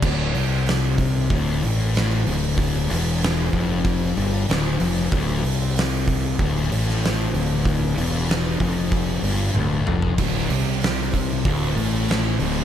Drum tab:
CC |x---------------|----------------|----------------|----------------|
HH |--o-o-o-o-o-o-o-|o-o-o-o-o-o-o-o-|o-o-o-o-o-o-o-o-|o-o-o-o-o-o-----|
SD |----o-------o---|----o-------o---|----o------oo---|----o-----------|
T1 |----------------|----------------|----------------|------------o---|
T2 |----------------|----------------|----------------|--------------o-|
FT |----------------|----------------|----------------|---------------o|
BD |o-----o-o-------|o-----o-o-------|o-----o-o-------|o-----o-o-------|

CC |x---------------|
HH |o-o-o-o-o-o-o-o-|
SD |----o-------o---|
T1 |----------------|
T2 |----------------|
FT |----------------|
BD |o-----o-o-------|